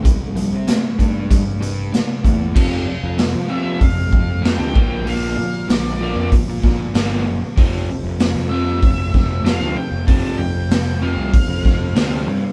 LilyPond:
<<
  \new Staff \with { instrumentName = "Lead electric guitar" } { \time 4/4 \key c \major \tempo 4 = 96 r1 | \key f \major r4. e''8 f''4 g''4 | f''4 d''4 r2 | r4. e''4. f''8 g''8 |
a''8 g''4 f''2 r8 | }
  \new Staff \with { instrumentName = "Tonewheel organ" } { \time 4/4 \key c \major r1 | \key f \major r1 | r1 | <f' a' c''>1 |
<a' c'' f''>1 | }
  \new Staff \with { instrumentName = "Overdriven electric guitar" } { \clef bass \time 4/4 \key c \major <c g>8 <c g>8 <c a>8 <c a>8 <c g>8 <c g>8 <c a>8 <c a>8 | \key f \major <f, c f>8 <f, c>8 <f, c>8 <f, c f>8 <f, c>8 <f, c>8 <f, c f>8 <bes, f bes>8 | <bes, f bes>8 <bes, f>8 <bes, f>8 <bes, f bes>8 <bes, f>8 <bes, f>8 <bes, f bes>8 <bes, f>8 | <f, c f>8 <f, c>8 <f, c>8 <f, c f>8 <f, c>8 <f, c>8 <f, c f>8 <f, c>8 |
<f, c f>8 <f, c>8 <f, c>8 <f, c f>8 <f, c>8 <f, c>8 <f, c f>8 <f, c>8 | }
  \new Staff \with { instrumentName = "Overdriven electric guitar" } { \clef bass \time 4/4 \key c \major <c g>8 <c g>8 <c a>8 <c a>8 <c g>8 <c g>8 <c a>8 <c a>8 | \key f \major <f, c f>8 <f, c>8 <f, c>8 <f, c f>8 <f, c>8 <f, c>8 <f, c f>8 <bes, d bes>8 | <bes, d bes>8 <bes, d>8 <bes, d>8 <bes, d bes>8 <bes, d>8 <bes, d>8 <bes, d bes>8 <bes, d>8 | <f, c f>8 <f, c>8 <f, c>8 <f, c f>8 <f, c>8 <f, c>8 <f, c f>8 <f, c>8 |
<f, c f>8 <f, c>8 <f, c>8 <f, c f>8 <f, c>8 <f, c>8 <f, c f>8 <f, c>8 | }
  \new Staff \with { instrumentName = "Picked electric bass" } { \clef bass \time 4/4 \key c \major c,16 c,16 bes,,16 c8 r16 g,8. g,16 g,8 r8 e,8 | \key f \major f,8 r16 f,8 f8. f,8 f,8. d,16 bes,,8~ | bes,,8 bes,8 bes,,8. f,16 r16 bes,8. g,,8 fis,,16 r16 | f,,8 r16 f,,8 f,8. f,,8 f,,8. d,16 r16 f,,16~ |
f,,16 r16 f,8 f,,8. c,16 r16 f,8. d,8 g,16 r16 | }
  \new DrumStaff \with { instrumentName = "Drums" } \drummode { \time 4/4 <hh bd>8 hh8 <hh sn>8 <hh bd>8 <hh bd>8 hh8 <hh sn>8 <hh bd>8 | <cymc bd>4 <hho sn>4 <hho bd>8 bd8 <hho sn>8 bd8 | hho4 <hho sn>4 <hho bd>8 <bd sn>8 <hho sn>4 | <hho bd>4 <hho sn>4 <hho bd>8 <bd sn>8 <hho sn>4 |
<hho bd>4 <hho sn>4 <hho bd>8 <bd sn>8 <hho sn>4 | }
>>